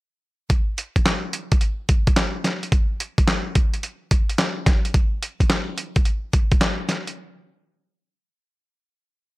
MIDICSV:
0, 0, Header, 1, 2, 480
1, 0, Start_track
1, 0, Tempo, 555556
1, 431, Time_signature, 4, 2, 24, 8
1, 8103, End_track
2, 0, Start_track
2, 0, Title_t, "Drums"
2, 431, Note_on_c, 9, 36, 94
2, 433, Note_on_c, 9, 42, 66
2, 518, Note_off_c, 9, 36, 0
2, 519, Note_off_c, 9, 42, 0
2, 673, Note_on_c, 9, 42, 73
2, 760, Note_off_c, 9, 42, 0
2, 829, Note_on_c, 9, 36, 84
2, 831, Note_on_c, 9, 42, 47
2, 912, Note_off_c, 9, 42, 0
2, 912, Note_on_c, 9, 42, 70
2, 913, Note_on_c, 9, 38, 114
2, 915, Note_off_c, 9, 36, 0
2, 918, Note_on_c, 9, 39, 99
2, 998, Note_off_c, 9, 42, 0
2, 999, Note_off_c, 9, 38, 0
2, 1004, Note_off_c, 9, 39, 0
2, 1151, Note_on_c, 9, 42, 82
2, 1237, Note_off_c, 9, 42, 0
2, 1310, Note_on_c, 9, 42, 51
2, 1312, Note_on_c, 9, 36, 94
2, 1391, Note_off_c, 9, 42, 0
2, 1391, Note_on_c, 9, 42, 68
2, 1398, Note_off_c, 9, 36, 0
2, 1477, Note_off_c, 9, 42, 0
2, 1631, Note_on_c, 9, 42, 77
2, 1633, Note_on_c, 9, 36, 85
2, 1717, Note_off_c, 9, 42, 0
2, 1719, Note_off_c, 9, 36, 0
2, 1789, Note_on_c, 9, 42, 50
2, 1791, Note_on_c, 9, 36, 93
2, 1870, Note_on_c, 9, 38, 110
2, 1871, Note_off_c, 9, 42, 0
2, 1871, Note_on_c, 9, 42, 77
2, 1875, Note_on_c, 9, 39, 86
2, 1877, Note_off_c, 9, 36, 0
2, 1957, Note_off_c, 9, 38, 0
2, 1957, Note_off_c, 9, 42, 0
2, 1962, Note_off_c, 9, 39, 0
2, 2111, Note_on_c, 9, 38, 68
2, 2114, Note_on_c, 9, 42, 68
2, 2198, Note_off_c, 9, 38, 0
2, 2201, Note_off_c, 9, 42, 0
2, 2272, Note_on_c, 9, 42, 50
2, 2351, Note_off_c, 9, 42, 0
2, 2351, Note_on_c, 9, 36, 99
2, 2351, Note_on_c, 9, 42, 63
2, 2437, Note_off_c, 9, 36, 0
2, 2437, Note_off_c, 9, 42, 0
2, 2594, Note_on_c, 9, 42, 78
2, 2680, Note_off_c, 9, 42, 0
2, 2748, Note_on_c, 9, 36, 87
2, 2749, Note_on_c, 9, 42, 54
2, 2830, Note_off_c, 9, 42, 0
2, 2830, Note_on_c, 9, 38, 109
2, 2830, Note_on_c, 9, 42, 67
2, 2835, Note_off_c, 9, 36, 0
2, 2835, Note_on_c, 9, 39, 93
2, 2916, Note_off_c, 9, 42, 0
2, 2917, Note_off_c, 9, 38, 0
2, 2922, Note_off_c, 9, 39, 0
2, 3070, Note_on_c, 9, 42, 78
2, 3072, Note_on_c, 9, 36, 90
2, 3156, Note_off_c, 9, 42, 0
2, 3158, Note_off_c, 9, 36, 0
2, 3227, Note_on_c, 9, 42, 48
2, 3311, Note_off_c, 9, 42, 0
2, 3311, Note_on_c, 9, 42, 64
2, 3397, Note_off_c, 9, 42, 0
2, 3551, Note_on_c, 9, 42, 79
2, 3553, Note_on_c, 9, 36, 88
2, 3638, Note_off_c, 9, 42, 0
2, 3639, Note_off_c, 9, 36, 0
2, 3711, Note_on_c, 9, 42, 52
2, 3788, Note_on_c, 9, 38, 111
2, 3789, Note_off_c, 9, 42, 0
2, 3789, Note_on_c, 9, 42, 78
2, 3793, Note_on_c, 9, 39, 88
2, 3875, Note_off_c, 9, 38, 0
2, 3875, Note_off_c, 9, 42, 0
2, 3880, Note_off_c, 9, 39, 0
2, 4029, Note_on_c, 9, 38, 63
2, 4030, Note_on_c, 9, 36, 101
2, 4032, Note_on_c, 9, 42, 71
2, 4115, Note_off_c, 9, 38, 0
2, 4116, Note_off_c, 9, 36, 0
2, 4118, Note_off_c, 9, 42, 0
2, 4190, Note_on_c, 9, 42, 52
2, 4271, Note_off_c, 9, 42, 0
2, 4271, Note_on_c, 9, 36, 102
2, 4271, Note_on_c, 9, 42, 62
2, 4357, Note_off_c, 9, 36, 0
2, 4357, Note_off_c, 9, 42, 0
2, 4515, Note_on_c, 9, 42, 79
2, 4601, Note_off_c, 9, 42, 0
2, 4669, Note_on_c, 9, 36, 80
2, 4671, Note_on_c, 9, 42, 49
2, 4749, Note_off_c, 9, 42, 0
2, 4749, Note_on_c, 9, 38, 111
2, 4749, Note_on_c, 9, 42, 67
2, 4754, Note_on_c, 9, 39, 86
2, 4755, Note_off_c, 9, 36, 0
2, 4835, Note_off_c, 9, 42, 0
2, 4836, Note_off_c, 9, 38, 0
2, 4841, Note_off_c, 9, 39, 0
2, 4990, Note_on_c, 9, 42, 76
2, 5077, Note_off_c, 9, 42, 0
2, 5148, Note_on_c, 9, 42, 52
2, 5151, Note_on_c, 9, 36, 99
2, 5230, Note_off_c, 9, 42, 0
2, 5230, Note_on_c, 9, 42, 68
2, 5237, Note_off_c, 9, 36, 0
2, 5317, Note_off_c, 9, 42, 0
2, 5472, Note_on_c, 9, 42, 75
2, 5473, Note_on_c, 9, 36, 91
2, 5559, Note_off_c, 9, 42, 0
2, 5560, Note_off_c, 9, 36, 0
2, 5629, Note_on_c, 9, 42, 48
2, 5631, Note_on_c, 9, 36, 95
2, 5711, Note_on_c, 9, 38, 110
2, 5712, Note_off_c, 9, 42, 0
2, 5712, Note_on_c, 9, 42, 80
2, 5716, Note_on_c, 9, 39, 89
2, 5717, Note_off_c, 9, 36, 0
2, 5798, Note_off_c, 9, 38, 0
2, 5798, Note_off_c, 9, 42, 0
2, 5803, Note_off_c, 9, 39, 0
2, 5950, Note_on_c, 9, 38, 61
2, 5953, Note_on_c, 9, 42, 71
2, 6036, Note_off_c, 9, 38, 0
2, 6039, Note_off_c, 9, 42, 0
2, 6112, Note_on_c, 9, 42, 50
2, 6199, Note_off_c, 9, 42, 0
2, 8103, End_track
0, 0, End_of_file